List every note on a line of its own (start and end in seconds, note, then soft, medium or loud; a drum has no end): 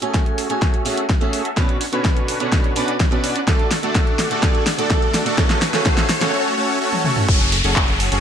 0.00 0.47 A3 medium
0.00 0.47 C#4 medium
0.00 0.47 F#4 medium
0.00 0.47 G#4 medium
0.00 0.47 A4 medium
0.00 0.47 C#5 medium
0.00 0.47 G#5 medium
0.00 closed hi-hat medium
0.00 riser medium
0.14 kick loud
0.14 snare soft
0.14 closed hi-hat medium
0.26 closed hi-hat soft
0.38 open hi-hat loud
0.49 0.83 A3 medium
0.49 0.83 C#4 medium
0.49 0.83 F#4 medium
0.49 0.83 G#4 medium
0.49 0.83 A4 medium
0.49 0.83 C#5 medium
0.49 0.83 G#5 medium
0.49 closed hi-hat medium
0.62 kick loud
0.62 snare soft
0.62 closed hi-hat medium
0.74 closed hi-hat soft
0.85 1.05 A3 loud
0.85 1.05 C#4 medium
0.85 1.03 C#4 medium
0.85 1.03 F#4 medium
0.85 1.06 F#4 medium
0.85 1.03 G#4 medium
0.85 1.06 G#4 medium
0.85 1.03 A4 medium
0.85 1.03 E5 loud
0.85 open hi-hat loud
0.97 closed hi-hat medium
1.09 kick loud
1.09 snare medium
1.09 closed hi-hat medium
1.21 1.41 A3 medium
1.21 1.41 C#4 medium
1.21 1.49 C#4 medium
1.21 1.49 F#4 medium
1.21 1.41 F#4 medium
1.21 1.49 G#4 medium
1.21 1.42 G#4 loud
1.21 1.49 A4 medium
1.21 1.49 E5 loud
1.21 closed hi-hat soft
1.33 open hi-hat loud
1.45 closed hi-hat medium
1.56 1.77 B2 medium
1.56 1.77 C#4 medium
1.56 1.85 C#4 medium
1.56 1.85 D4 medium
1.56 1.77 D4 medium
1.56 1.77 F#4 medium
1.56 1.85 F#4 medium
1.56 1.85 B4 medium
1.56 1.77 B4 medium
1.56 1.85 C#5 medium
1.56 kick loud
1.56 snare medium
1.56 closed hi-hat soft
1.69 closed hi-hat soft
1.81 open hi-hat loud
1.92 2.37 B2 medium
1.92 2.38 D3 medium
1.92 2.38 C#4 medium
1.92 2.38 D4 medium
1.92 2.38 F#4 medium
1.92 2.38 B4 medium
1.92 2.38 C#5 medium
1.92 2.37 C#5 medium
1.92 closed hi-hat soft
2.05 kick loud
2.05 snare medium
2.05 closed hi-hat medium
2.17 closed hi-hat soft
2.28 open hi-hat loud
2.40 2.73 B2 medium
2.40 2.73 D3 medium
2.40 2.73 C#4 medium
2.40 2.73 D4 medium
2.40 2.73 F#4 medium
2.40 2.73 B4 medium
2.40 2.74 B4 loud
2.40 2.73 C#5 medium
2.40 closed hi-hat medium
2.52 kick loud
2.52 snare medium
2.52 closed hi-hat medium
2.64 closed hi-hat soft
2.76 2.96 B2 loud
2.76 2.94 C#4 loud
2.76 2.96 C#4 medium
2.76 2.93 D4 medium
2.76 2.96 D4 medium
2.76 2.94 F#4 medium
2.76 2.96 F#4 medium
2.76 2.94 B4 medium
2.76 2.96 B4 loud
2.76 2.94 D5 loud
2.76 open hi-hat loud
2.88 closed hi-hat medium
3.00 kick loud
3.00 snare medium
3.00 closed hi-hat medium
3.11 3.31 B2 loud
3.11 3.40 C#4 medium
3.11 3.32 C#4 medium
3.11 3.32 D4 medium
3.11 3.40 D4 medium
3.11 3.40 F#4 medium
3.11 3.32 F#4 medium
3.11 3.40 B4 medium
3.11 3.32 B4 loud
3.11 3.40 D5 loud
3.11 closed hi-hat soft
3.24 open hi-hat loud
3.36 closed hi-hat medium
3.47 3.67 D3 medium
3.47 3.67 A3 medium
3.47 3.75 A3 medium
3.47 3.67 D4 medium
3.47 3.75 D4 medium
3.47 3.75 F#4 medium
3.47 3.68 F#4 medium
3.47 3.75 A4 medium
3.47 3.68 A4 medium
3.47 3.75 D5 medium
3.47 kick loud
3.47 snare medium
3.47 closed hi-hat soft
3.59 closed hi-hat soft
3.71 snare medium
3.71 open hi-hat loud
3.82 4.28 D3 medium
3.82 4.28 A3 medium
3.82 4.28 D4 medium
3.82 4.28 F#4 medium
3.82 4.28 A4 medium
3.82 4.28 D5 medium
3.82 closed hi-hat soft
3.95 kick loud
3.95 snare medium
3.95 closed hi-hat medium
4.07 closed hi-hat soft
4.19 snare medium
4.19 open hi-hat loud
4.30 4.41 D3 medium
4.30 4.41 A3 medium
4.30 4.41 D4 medium
4.30 4.41 F#4 medium
4.30 4.41 A4 medium
4.30 4.41 D5 medium
4.30 closed hi-hat medium
4.42 4.62 D3 medium
4.42 4.62 A3 medium
4.42 4.71 A3 medium
4.42 4.63 D4 medium
4.42 4.71 D4 medium
4.42 4.71 F#4 medium
4.42 4.63 F#4 medium
4.42 4.71 A4 medium
4.42 4.63 A4 loud
4.42 4.71 D5 medium
4.42 kick loud
4.42 snare medium
4.42 closed hi-hat medium
4.55 closed hi-hat soft
4.67 snare medium
4.67 open hi-hat loud
4.78 5.23 D3 medium
4.78 5.23 A3 medium
4.78 5.23 D4 medium
4.78 5.23 F#4 medium
4.78 5.23 A4 medium
4.78 5.24 A4 medium
4.78 5.23 D5 medium
4.78 closed hi-hat soft
4.90 kick loud
4.90 snare medium
4.90 closed hi-hat medium
5.02 closed hi-hat soft
5.14 snare medium
5.14 open hi-hat loud
5.25 5.36 D3 medium
5.25 5.36 A3 medium
5.25 5.36 D4 medium
5.25 5.36 F#4 medium
5.25 5.36 A4 medium
5.25 5.36 A4 loud
5.25 5.36 D5 medium
5.25 closed hi-hat medium
5.37 5.58 C#3 medium
5.37 5.58 A3 medium
5.37 5.66 A3 medium
5.37 5.58 C#4 medium
5.37 5.66 C#4 medium
5.37 5.66 F#4 medium
5.37 5.58 F#4 medium
5.37 5.66 A4 medium
5.37 5.58 A4 loud
5.37 5.66 C#5 medium
5.37 kick loud
5.37 snare medium
5.37 closed hi-hat soft
5.50 snare medium
5.50 closed hi-hat soft
5.62 snare medium
5.62 open hi-hat loud
5.73 5.83 C#3 medium
5.73 5.84 A3 medium
5.73 5.84 C#4 medium
5.73 5.84 F#4 medium
5.73 5.84 A4 medium
5.73 5.84 C#5 medium
5.73 snare medium
5.73 closed hi-hat soft
5.85 6.05 C#3 loud
5.85 6.05 A3 medium
5.85 6.05 C#4 medium
5.85 6.06 F#4 medium
5.85 6.06 A4 loud
5.85 kick loud
5.85 snare medium
5.85 closed hi-hat medium
5.97 snare medium
5.97 closed hi-hat soft
6.09 snare medium
6.09 open hi-hat loud
6.21 6.31 C#3 medium
6.21 6.31 A3 medium
6.21 6.31 C#4 medium
6.21 6.31 F#4 medium
6.21 6.32 F#4 medium
6.21 6.31 A4 medium
6.21 6.32 A4 loud
6.21 6.31 C#5 medium
6.21 snare medium
6.21 closed hi-hat medium
6.33 6.55 A3 medium
6.33 6.55 C#4 medium
6.33 6.55 F#4 medium
6.33 6.55 A4 medium
6.33 6.55 C#5 medium
6.57 6.79 A3 medium
6.57 6.79 C#4 medium
6.57 6.79 F#4 medium
6.57 6.79 A4 medium
6.57 6.79 C#5 medium
6.81 7.03 A3 medium
6.81 7.03 C#4 medium
6.81 7.03 F#4 medium
6.81 7.03 A4 medium
6.81 7.03 C#5 medium
6.93 high tom medium
7.05 7.27 A3 medium
7.05 7.27 C#4 medium
7.05 7.27 F#4 medium
7.05 7.27 A4 medium
7.05 7.27 C#5 medium
7.05 mid tom medium
7.17 mid tom medium
7.28 7.62 F#1 medium
7.28 7.56 C#4 medium
7.28 7.56 F#4 medium
7.28 7.56 G#4 medium
7.28 7.56 A4 medium
7.28 7.56 C#5 medium
7.28 kick loud
7.28 closed hi-hat medium
7.28 crash loud
7.28 downlifter medium
7.40 closed hi-hat soft
7.52 open hi-hat loud
7.64 8.10 F#1 loud
7.64 8.09 C#4 medium
7.64 8.09 F#4 medium
7.64 8.09 G#4 medium
7.64 8.09 A4 medium
7.64 8.09 C#5 medium
7.64 closed hi-hat medium
7.76 kick loud
7.76 clap loud
7.76 closed hi-hat medium
7.88 closed hi-hat soft
8.00 open hi-hat loud
8.12 8.20 F#1 medium
8.12 8.20 C#4 medium
8.12 8.20 F#4 medium
8.12 8.20 G#4 medium
8.12 8.20 A4 medium
8.12 8.20 C#5 medium
8.12 closed hi-hat medium